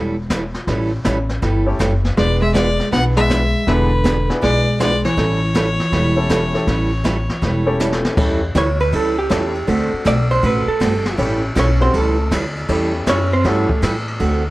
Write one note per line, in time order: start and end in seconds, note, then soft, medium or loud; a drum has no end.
0.00 0.52 E1 medium
0.00 0.15 E3 medium
0.00 0.15 G3 medium
0.00 0.15 C#4 medium
0.00 0.15 E4 medium
0.00 0.15 A4 medium
0.30 0.42 E3 medium
0.30 0.42 G3 medium
0.30 0.42 C#4 medium
0.30 0.42 E4 medium
0.30 0.42 A4 medium
0.30 kick soft
0.30 snare medium
0.30 hi-hat pedal medium
0.54 snare soft
0.67 0.97 A1 medium
0.67 0.90 E3 medium
0.67 0.90 G3 medium
0.67 0.90 C#4 medium
0.67 0.90 E4 medium
0.67 0.90 A4 medium
0.67 brush sweep medium
0.67 kick soft
0.67 snare soft
1.05 1.37 A1 medium
1.05 1.17 E3 medium
1.05 1.17 G3 medium
1.05 1.17 C#4 medium
1.05 1.17 E4 medium
1.05 1.17 A4 medium
1.05 kick soft
1.05 snare medium
1.05 hi-hat pedal medium
1.29 snare soft
1.42 1.74 G1 medium
1.42 1.64 E3 medium
1.42 1.65 G3 medium
1.42 1.65 C#4 medium
1.42 1.65 E4 medium
1.42 1.65 A4 medium
1.42 brush sweep medium
1.42 kick soft
1.42 snare soft
1.66 1.78 A3 medium
1.66 1.78 C#4 medium
1.66 1.79 E4 medium
1.66 1.79 G4 medium
1.66 1.79 A4 medium
1.79 2.12 F#1 medium
1.79 1.91 E3 medium
1.79 1.92 G3 medium
1.79 1.92 C#4 medium
1.79 1.92 E4 medium
1.79 1.92 A4 medium
1.79 kick soft
1.79 snare medium
1.79 hi-hat pedal medium
2.05 snare soft
2.17 2.77 E1 medium
2.17 2.39 E3 medium
2.17 2.40 G#3 medium
2.17 2.40 B3 medium
2.17 2.40 D4 medium
2.17 2.40 G#4 medium
2.17 2.40 D5 loud
2.17 brush sweep soft
2.17 kick soft
2.17 snare soft
2.42 2.53 G#3 medium
2.42 2.54 E5 medium
2.54 2.66 E3 medium
2.54 2.89 G#3 medium
2.54 2.66 B3 medium
2.54 2.67 D4 medium
2.54 2.67 G#4 medium
2.54 2.89 D5 medium
2.54 kick soft
2.54 snare medium
2.54 hi-hat pedal medium
2.79 snare soft
2.92 3.52 B1 medium
2.92 3.14 E3 medium
2.92 3.14 B3 medium
2.92 2.99 B3 medium
2.92 3.15 D4 medium
2.92 3.15 G#4 medium
2.92 3.03 F#5 loud
2.92 brush sweep medium
2.92 kick soft
2.92 snare medium
3.16 3.64 G#3 medium
3.16 3.28 B3 medium
3.16 3.28 D4 medium
3.16 3.28 E4 medium
3.16 3.29 G#4 medium
3.16 3.29 B4 medium
3.16 3.69 E5 loud
3.30 3.41 E3 medium
3.30 3.41 B3 medium
3.30 3.42 D4 medium
3.30 3.42 G#4 medium
3.30 kick soft
3.30 snare medium
3.30 hi-hat pedal medium
3.67 4.27 E1 medium
3.67 4.30 D3 medium
3.67 3.89 E3 medium
3.67 3.89 B3 medium
3.67 3.90 B3 medium
3.67 3.89 D4 medium
3.67 3.90 D4 medium
3.67 3.89 E4 medium
3.67 3.89 G#4 medium
3.67 3.90 G#4 medium
3.67 4.29 B4 medium
3.67 3.89 B4 medium
3.67 brush sweep soft
3.67 kick soft
3.67 snare soft
4.04 4.16 E3 medium
4.04 4.16 B3 medium
4.04 4.17 D4 medium
4.04 4.17 G#4 medium
4.04 kick soft
4.04 snare medium
4.04 hi-hat pedal medium
4.29 4.41 B3 medium
4.29 4.41 D4 medium
4.29 4.41 E4 medium
4.29 4.41 G#4 medium
4.29 4.41 B4 medium
4.29 snare soft
4.41 5.02 B1 medium
4.41 4.64 E3 medium
4.41 4.77 G#3 medium
4.41 4.64 B3 medium
4.41 4.64 D4 medium
4.41 4.64 G#4 medium
4.41 4.77 D5 loud
4.41 brush sweep medium
4.41 kick soft
4.41 snare soft
4.80 4.91 E3 medium
4.80 5.03 G#3 medium
4.80 4.92 B3 medium
4.80 4.92 D4 medium
4.80 4.92 G#4 medium
4.80 5.03 D5 loud
4.80 kick soft
4.80 snare medium
4.80 hi-hat pedal medium
5.05 7.76 E3 medium
5.05 7.76 C#5 medium
5.05 snare soft
5.17 5.77 A1 medium
5.17 5.39 E3 medium
5.17 5.39 G3 medium
5.17 5.39 C#4 medium
5.17 5.40 E4 medium
5.17 5.40 A4 medium
5.17 brush sweep medium
5.17 kick soft
5.17 snare soft
5.54 5.66 E3 medium
5.54 5.66 G3 medium
5.54 5.67 C#4 medium
5.54 5.67 E4 medium
5.54 5.67 A4 medium
5.54 kick soft
5.54 snare medium
5.54 hi-hat pedal medium
5.80 snare soft
5.92 6.52 E1 medium
5.92 6.14 E3 medium
5.92 6.15 G3 medium
5.92 6.15 C#4 medium
5.92 6.15 E4 medium
5.92 6.15 A4 medium
5.92 brush sweep soft
5.92 kick soft
5.92 snare soft
6.16 6.52 A3 medium
6.16 6.52 C#4 medium
6.16 6.52 E4 medium
6.16 6.52 G4 medium
6.16 6.52 A4 medium
6.29 6.41 E3 medium
6.29 6.41 G3 medium
6.29 6.41 C#4 medium
6.29 6.42 E4 medium
6.29 6.42 A4 medium
6.29 kick soft
6.29 snare medium
6.29 hi-hat pedal medium
6.54 6.66 A3 medium
6.54 6.66 C#4 medium
6.54 6.66 E4 medium
6.54 6.66 G4 medium
6.54 6.66 A4 medium
6.54 snare soft
6.67 7.27 A1 medium
6.67 6.90 E3 medium
6.67 6.90 G3 medium
6.67 6.90 C#4 medium
6.67 6.90 E4 medium
6.67 6.90 A4 medium
6.67 brush sweep medium
6.67 kick soft
6.67 snare soft
7.04 7.16 E3 medium
7.04 7.16 G3 medium
7.04 7.17 C#4 medium
7.04 7.17 E4 medium
7.04 7.17 A4 medium
7.04 kick soft
7.04 snare medium
7.04 hi-hat pedal medium
7.29 snare soft
7.42 8.02 E1 medium
7.42 7.64 E3 medium
7.42 7.64 G3 medium
7.42 7.65 C#4 medium
7.42 7.65 E4 medium
7.42 7.65 A4 medium
7.42 brush sweep soft
7.42 kick soft
7.42 snare soft
7.66 8.14 A3 medium
7.66 8.15 C#4 medium
7.66 8.15 E4 medium
7.66 8.15 G4 medium
7.66 8.15 A4 medium
7.80 7.92 E3 medium
7.80 7.92 G3 medium
7.80 7.92 C#4 medium
7.80 7.92 E4 medium
7.80 7.92 A4 medium
7.80 snare soft
7.80 hi-hat pedal medium
7.92 snare medium
8.05 snare medium
8.17 8.54 E2 medium
8.17 8.39 E3 medium
8.17 8.40 G3 medium
8.17 8.39 A3 medium
8.17 8.39 C#4 medium
8.17 8.40 C#4 medium
8.17 8.40 E4 medium
8.17 8.40 G4 medium
8.17 8.40 A4 medium
8.17 kick medium
8.17 crash medium
8.55 8.91 D2 medium
8.55 8.67 E3 medium
8.55 8.67 G3 medium
8.55 8.67 C#4 medium
8.55 8.67 E4 medium
8.55 8.67 A4 medium
8.55 8.80 C#5 medium
8.55 kick soft
8.55 snare medium
8.55 hi-hat pedal medium
8.55 ride medium
8.80 8.93 B4 medium
8.80 ride medium
8.92 9.29 C#2 medium
8.92 9.15 E3 medium
8.92 9.15 G3 medium
8.92 9.15 C#4 medium
8.92 9.15 E4 medium
8.92 9.15 A4 medium
8.92 9.18 A4 medium
8.92 kick soft
8.92 ride medium
9.19 9.65 G4 medium
9.29 9.67 E2 medium
9.29 9.42 E3 medium
9.29 9.42 G3 medium
9.29 9.52 A3 medium
9.29 9.52 C#4 medium
9.29 9.42 C#4 medium
9.29 9.52 E4 medium
9.29 9.42 E4 medium
9.29 9.52 G4 medium
9.29 9.52 A4 medium
9.29 9.42 A4 medium
9.29 kick soft
9.29 snare medium
9.29 hi-hat pedal medium
9.29 ride medium
9.55 ride soft
9.67 9.91 D2 medium
9.67 9.90 D3 medium
9.67 10.25 A3 medium
9.67 9.90 A3 medium
9.67 10.25 C4 medium
9.67 9.90 C4 medium
9.67 10.25 D4 medium
9.67 10.25 F#4 medium
9.67 9.90 F#4 medium
9.67 10.25 A4 medium
9.67 9.91 A4 medium
9.67 kick soft
9.67 ride medium
9.93 muted upright bass stroke soft
10.05 10.42 B1 medium
10.05 10.17 D3 medium
10.05 10.17 A3 medium
10.05 10.17 C4 medium
10.05 10.17 F#4 medium
10.05 10.18 A4 medium
10.05 10.30 D5 medium
10.05 kick soft
10.05 snare medium
10.05 hi-hat pedal medium
10.05 ride medium
10.30 10.43 C5 medium
10.30 ride medium
10.42 10.66 A1 medium
10.42 10.65 D3 medium
10.42 10.65 A3 medium
10.42 10.65 C4 medium
10.42 10.65 F#4 medium
10.42 10.66 A4 medium
10.42 kick soft
10.42 ride medium
10.46 10.69 B4 medium
10.67 11.15 A4 medium
10.67 muted upright bass stroke soft
10.80 11.17 G1 medium
10.80 10.92 D3 medium
10.80 10.92 A3 medium
10.80 10.92 C4 medium
10.80 10.93 F#4 medium
10.80 10.93 A4 medium
10.80 kick soft
10.80 snare medium
10.80 hi-hat pedal medium
10.80 ride medium
11.05 snare medium
11.05 ride soft
11.17 11.55 A1 medium
11.17 11.40 E3 medium
11.17 11.40 G3 medium
11.17 11.41 A3 medium
11.17 11.41 C#4 medium
11.17 11.41 E4 medium
11.17 11.41 G4 medium
11.17 11.41 A4 medium
11.17 kick soft
11.17 ride medium
11.55 11.93 B1 loud
11.55 11.68 E3 medium
11.55 11.68 G3 medium
11.55 11.68 C#4 medium
11.55 11.82 C#4 medium
11.55 11.68 E4 medium
11.55 11.68 A4 medium
11.55 kick soft
11.55 snare medium
11.55 hi-hat pedal medium
11.55 ride medium
11.59 11.82 C#5 medium
11.80 11.92 G3 medium
11.80 11.92 A3 medium
11.80 11.94 C4 medium
11.80 11.92 C#4 medium
11.80 11.93 E4 medium
11.80 11.93 F#4 medium
11.80 11.94 C5 medium
11.80 ride soft
11.93 12.30 C#2 medium
11.93 12.16 E3 medium
11.93 12.16 G3 medium
11.93 12.31 A3 medium
11.93 12.16 C#4 medium
11.93 12.16 E4 medium
11.93 12.16 A4 medium
11.93 kick soft
11.93 ride medium
11.98 12.31 A4 medium
12.31 12.68 D2 medium
12.31 12.43 E3 medium
12.31 12.43 G3 medium
12.31 12.44 C#4 medium
12.31 12.44 E4 medium
12.31 12.44 A4 medium
12.31 kick soft
12.31 snare medium
12.31 hi-hat pedal medium
12.31 ride medium
12.56 ride soft
12.69 13.06 E2 medium
12.69 12.91 E3 medium
12.69 13.26 G3 medium
12.69 12.91 G3 medium
12.69 13.26 A3 medium
12.69 12.91 C#4 medium
12.69 13.27 C#4 medium
12.69 12.91 E4 medium
12.69 13.27 E4 medium
12.69 13.27 G4 medium
12.69 12.92 A4 medium
12.69 kick soft
12.69 ride medium
13.07 13.43 F#2 medium
13.07 13.19 E3 medium
13.07 13.19 G3 medium
13.07 13.19 C#4 medium
13.07 13.32 C#4 medium
13.07 13.19 E4 medium
13.07 13.19 A4 medium
13.07 13.32 C#5 medium
13.07 kick soft
13.07 snare medium
13.07 hi-hat pedal medium
13.07 ride medium
13.32 13.45 C4 medium
13.32 13.45 C5 medium
13.32 ride soft
13.44 13.68 G2 medium
13.44 13.67 E3 medium
13.44 13.67 G3 medium
13.44 13.67 A3 medium
13.44 13.67 C#4 medium
13.44 13.67 E4 medium
13.44 13.67 F#4 medium
13.44 13.67 A4 medium
13.44 13.81 A4 medium
13.44 kick soft
13.44 snare soft
13.44 ride medium
13.48 13.82 A3 soft
13.69 muted upright bass stroke soft
13.69 kick medium
13.82 14.19 A2 medium
13.82 13.94 E3 medium
13.82 13.94 G3 medium
13.82 13.94 C#4 medium
13.82 13.94 E4 medium
13.82 13.94 A4 medium
13.82 snare medium
13.82 hi-hat pedal medium
13.82 ride medium
14.08 ride soft
14.20 14.50 D2 medium
14.20 14.42 D3 medium
14.20 14.42 A3 medium
14.20 14.42 C4 medium
14.20 14.42 F#4 medium
14.20 14.43 A4 medium
14.20 kick soft
14.20 ride medium